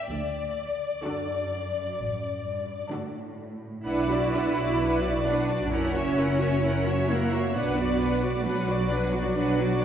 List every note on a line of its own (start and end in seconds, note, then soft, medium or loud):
0.08 0.85 D2 soft
0.08 0.86 D2 soft
0.08 2.88 D5 medium
1.04 2.43 F#2 soft
1.04 1.76 D3 soft
1.04 1.76 D4 soft
1.04 1.76 F#4 soft
1.04 1.76 A4 soft
1.98 2.75 A1 soft
2.47 2.93 G2 soft
2.91 3.87 A2 soft
2.91 3.64 D3 soft
2.91 3.64 D4 soft
2.91 3.65 F#4 soft
2.91 3.64 A4 soft
3.86 5.68 B1 soft
3.86 4.09 D4 soft
3.86 5.23 E4 medium
3.86 4.09 B4 soft
3.86 4.09 F#5 soft
4.10 4.34 F#4 soft
4.10 4.35 D5 soft
4.33 4.58 D4 soft
4.33 4.58 B4 soft
4.33 4.57 F#5 soft
4.57 4.81 F#4 soft
4.57 4.81 D5 soft
4.80 5.03 D4 soft
4.80 5.02 B4 soft
4.80 5.02 F#5 soft
5.03 5.26 F#4 soft
5.03 5.26 D5 soft
5.26 5.63 D4 medium
5.26 5.49 D4 soft
5.26 5.49 B4 soft
5.26 5.49 F#5 soft
5.48 5.73 F#4 soft
5.48 5.72 D5 soft
5.64 5.72 D4 soft
5.71 7.55 F#1 soft
5.71 7.09 C#4 medium
5.71 5.93 E4 soft
5.71 5.93 A#4 soft
5.71 5.93 F#5 soft
5.94 6.18 F#4 soft
5.94 6.18 C#5 soft
5.94 6.18 E5 soft
6.17 6.41 E4 soft
6.17 6.41 A#4 soft
6.17 6.41 F#5 soft
6.39 6.63 F#4 soft
6.39 6.64 C#5 soft
6.39 6.65 E5 soft
6.63 6.85 E4 soft
6.63 6.86 A#4 soft
6.63 6.86 F#5 soft
6.85 7.09 F#4 soft
6.85 7.10 C#5 soft
6.85 7.09 E5 soft
7.09 7.55 A#3 medium
7.09 7.32 E4 soft
7.09 7.33 A#4 soft
7.09 7.33 F#5 soft
7.32 7.55 F#4 soft
7.32 7.55 C#5 soft
7.32 7.55 E5 soft
7.54 9.85 B1 soft
7.54 8.43 B3 medium
7.54 7.76 D4 soft
7.54 7.77 B4 soft
7.54 7.76 F#5 soft
7.77 8.00 F#4 soft
7.77 8.00 D5 soft
7.99 8.22 D4 soft
7.99 8.23 B4 soft
7.99 8.23 F#5 soft
8.23 8.45 F#4 soft
8.23 8.46 D5 soft
8.45 9.85 F#3 medium
8.45 8.67 D4 soft
8.45 8.67 B4 soft
8.45 8.67 F#5 soft
8.69 8.92 F#4 soft
8.69 8.92 D5 soft
8.90 9.14 D4 soft
8.90 9.15 B4 soft
8.90 9.14 F#5 soft
9.12 9.37 F#4 soft
9.12 9.36 D5 soft
9.12 9.38 D5 soft
9.36 9.58 D4 soft
9.36 9.59 B4 soft
9.36 9.58 F#5 soft
9.59 9.83 F#4 soft
9.59 9.82 D5 soft
9.59 9.83 D5 soft
9.81 9.85 F#5 soft